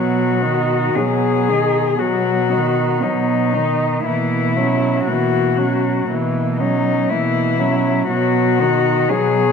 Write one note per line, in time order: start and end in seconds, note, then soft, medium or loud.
0.00 0.84 B2 soft
0.00 0.46 F#3 soft
0.00 0.44 B3 soft
0.00 0.97 F#4 soft
0.42 0.99 D#3 soft
0.42 0.97 D#4 soft
0.95 1.87 B2 soft
0.95 1.51 F#3 soft
0.95 1.50 B3 soft
0.95 2.00 G#4 medium
1.49 1.99 D#3 soft
1.49 1.98 D#4 soft
1.99 2.90 B2 soft
1.99 2.54 F#3 soft
1.99 2.50 B3 soft
1.99 3.04 F#4 medium
2.49 3.04 D#3 soft
2.49 3.02 D#4 soft
3.00 3.93 B2 soft
3.00 3.55 F#3 soft
3.00 3.54 B3 soft
3.00 4.05 D#4 soft
3.53 4.05 D#3 soft
3.53 4.04 D#4 soft
4.04 4.95 B2 soft
4.04 4.58 E3 soft
4.04 4.59 A#3 soft
4.04 5.05 E4 soft
4.57 5.10 F#3 soft
4.57 5.09 C#4 soft
5.06 5.96 B2 soft
5.06 5.60 E3 soft
5.06 5.58 A#3 soft
5.06 6.06 F#4 soft
5.57 6.09 F#3 soft
5.57 6.07 C#4 soft
6.08 6.97 B2 soft
6.08 6.62 E3 soft
6.08 6.60 A#3 soft
6.56 7.11 C#4 soft
6.56 7.10 D#4 soft
6.61 7.12 F#3 soft
7.09 7.97 B2 soft
7.09 7.61 E3 soft
7.09 7.60 A#3 soft
7.09 8.08 E4 soft
7.59 8.09 F#3 soft
7.59 8.09 C#4 soft
8.08 8.97 B2 soft
8.08 8.61 F#3 soft
8.08 8.61 B3 soft
8.08 9.10 F#4 medium
8.59 9.10 D#3 soft
8.59 9.11 D#4 soft
9.09 9.52 B2 soft
9.09 9.52 F#3 soft
9.09 9.52 B3 soft
9.09 9.52 G#4 medium